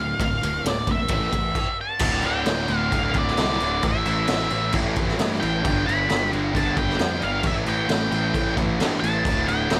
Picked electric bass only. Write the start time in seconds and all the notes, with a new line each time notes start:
Already playing: D2
0.20 D1
0.42 D1
0.65 D1
0.88 A#1
1.10 A1
1.32 A1
2.01 D1
2.24 D1
2.46 D1
2.69 D1
2.92 D1
3.38 C2
3.61 D1
3.83 A1
4.06 A1
4.29 A1
4.51 A1
4.74 A1
5.20 G2
5.43 A1
5.65 G1
5.88 G1
6.11 G1
6.33 G1
6.55 G1
7.00 F2
7.22 G1
7.44 A1
7.66 A1
7.89 A1
8.11 A1
8.34 A1
8.79 G2
9.02 A1
9.25 D1
9.48 D1
9.70 D1